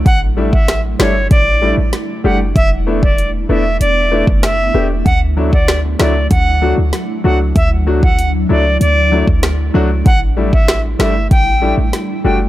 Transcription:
Already playing: ambient pad A3 E4
0.06 808-style bass A1, ambient pad G3 D4, flute F#5, kick, closed hi-hat
0.37 grand piano G3 A3 D4 E4
0.53 flute E5, kick
0.68 cross-stick, snare, closed hi-hat
0.99 808-style bass G1, grand piano G3 A3 D4 E4, flute C#5, cross-stick, snare
1.31 808-style bass A1, flute D5, kick, closed hi-hat
1.62 grand piano G3 A3 D4 E4
1.78 808-style bass A1
1.93 snare, closed hi-hat
2.24 808-style bass F#1, grand piano G3 A3 D4 G4, flute F#5
2.56 808-style bass E1, ambient pad B3, flute E5, kick, closed hi-hat
2.87 grand piano A3 B3 D4 E4
3.03 flute D5, kick
3.18 closed hi-hat
3.49 808-style bass E1, grand piano A3 B3 D4 E4, flute E5
3.81 808-style bass E1, flute D5, closed hi-hat
4.11 grand piano A3 B3 D4 E4
4.27 808-style bass F#1, kick
4.43 flute E5, cross-stick, snare, closed hi-hat
4.74 808-style bass E1, grand piano A3 B3 D4 G4
5.05 808-style bass D2, ambient pad F#3 E4, flute F#5, kick, closed hi-hat
5.37 grand piano F#3 A3 D4 E4
5.52 flute D5, kick
5.68 cross-stick, snare, closed hi-hat
5.99 808-style bass C#2, grand piano F#3 A3 D4 E4, flute D5, cross-stick, snare
6.31 808-style bass D2, flute F#5, kick, closed hi-hat
6.62 grand piano F#3 A3 D4 F#4
6.78 808-style bass D2
6.93 snare, closed hi-hat
7.24 808-style bass C#2, grand piano F#3 A3 D4 F#4, flute F#5
7.56 808-style bass D2, flute E5, kick, closed hi-hat
7.87 grand piano F#3 A3 D4 F#4
8.03 flute F#5, kick
8.19 closed hi-hat
8.49 808-style bass C#2, grand piano F#3 A3 D4 E4, flute D5
8.81 808-style bass D2, flute D5, closed hi-hat
9.12 grand piano F#3 A3 D4 E4
9.27 808-style bass D2, kick
9.43 cross-stick, snare, closed hi-hat
9.74 808-style bass C#2, grand piano F#3 A3 D4 F#4
10.06 808-style bass A1, ambient pad G3 A3, flute F#5, kick, closed hi-hat
10.37 grand piano G3 A3 D4 E4
10.53 flute E5, kick
10.68 cross-stick, snare, closed hi-hat
10.99 808-style bass G1, grand piano G3 A3 D4 E4, flute E5, cross-stick, snare
11.31 808-style bass A1, flute G5, kick, closed hi-hat
11.62 grand piano G3 A3 D4 E4
11.78 808-style bass A1
11.93 snare, closed hi-hat
12.24 808-style bass F#1, grand piano G3 A3 D4 F#4, flute G5

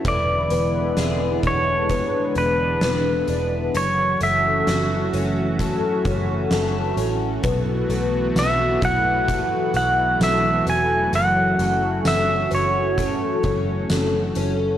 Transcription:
Already playing: twelve-string acoustic guitar A3 C#4 F#4
0.04 picked electric bass E1, analog synth pad D3 E3 G#3 B3 E4, twelve-string acoustic guitar E3, kick, closed hi-hat
0.08 pedal steel guitar D5
0.50 picked electric bass E1, twelve-string acoustic guitar B3, closed hi-hat
0.97 picked electric bass E1, twelve-string acoustic guitar G#4, snare, closed hi-hat
1.43 picked electric bass E1, twelve-string acoustic guitar D4, pedal steel guitar C#5, kick, closed hi-hat
1.89 twelve-string acoustic guitar B3, analog synth pad D4, kick, closed hi-hat
2.35 picked electric bass E1, twelve-string acoustic guitar D4, pedal steel guitar B4, closed hi-hat
2.81 picked electric bass E1, twelve-string acoustic guitar B3, snare, closed hi-hat
3.28 picked electric bass E1, twelve-string acoustic guitar D4, closed hi-hat
3.73 picked electric bass F#1, twelve-string acoustic guitar F#2, analog synth pad F#3 A3 C#4 F#4, pedal steel guitar C#5, closed hi-hat
4.21 picked electric bass F#1, twelve-string acoustic guitar A3, pedal steel guitar E5, closed hi-hat
4.67 picked electric bass F#1, twelve-string acoustic guitar F#4, snare, closed hi-hat
5.13 picked electric bass F#1, twelve-string acoustic guitar C#4, closed hi-hat
5.59 twelve-string acoustic guitar A3, kick, closed hi-hat
6.05 picked electric bass F#1, twelve-string acoustic guitar C#4, kick, closed hi-hat
6.51 picked electric bass F#1, twelve-string acoustic guitar A3, snare, closed hi-hat
6.97 picked electric bass A1, twelve-string acoustic guitar C#4, closed hi-hat
7.43 picked electric bass B1, twelve-string acoustic guitar B2, analog synth pad B3 F#4, kick, closed hi-hat
7.90 picked electric bass B1, twelve-string acoustic guitar A3, closed hi-hat
8.36 picked electric bass B1, twelve-string acoustic guitar F#4, pedal steel guitar E5, snare, closed hi-hat, tambourine
8.82 picked electric bass B1, twelve-string acoustic guitar E4, pedal steel guitar F#5, kick, closed hi-hat
9.28 twelve-string acoustic guitar A3, kick, closed hi-hat
9.74 picked electric bass B1, twelve-string acoustic guitar E4, pedal steel guitar F#5, closed hi-hat
10.20 picked electric bass B1, twelve-string acoustic guitar A3, pedal steel guitar E5, snare, closed hi-hat, tambourine
10.66 picked electric bass E1, twelve-string acoustic guitar E4, pedal steel guitar G#5, closed hi-hat
11.13 picked electric bass F#1, twelve-string acoustic guitar F#2, analog synth pad C#4, pedal steel guitar F#5, closed hi-hat
11.59 picked electric bass F#1, twelve-string acoustic guitar A3, closed hi-hat
12.05 picked electric bass F#1, twelve-string acoustic guitar F#4, pedal steel guitar E5, snare, closed hi-hat, tambourine
12.51 picked electric bass F#1, twelve-string acoustic guitar C#4, pedal steel guitar C#5, closed hi-hat
12.98 twelve-string acoustic guitar A3, kick, closed hi-hat
13.43 picked electric bass F#1, twelve-string acoustic guitar C#4, kick, closed hi-hat
13.90 picked electric bass F#1, twelve-string acoustic guitar A3, snare, closed hi-hat, tambourine
14.35 picked electric bass F#1, twelve-string acoustic guitar C#4, closed hi-hat

